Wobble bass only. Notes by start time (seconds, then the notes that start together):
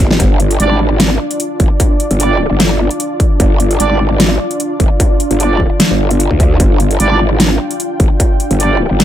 Already playing: G1
0.20 G1
0.60 G#1
1.60 G1
2.11 G1
2.51 G1
3.40 G1
3.80 G#1
4.80 G1
5.31 G1
5.91 G1
6.31 D2
6.60 G1
7.00 G#1
8.00 G1
8.51 G1
8.91 G1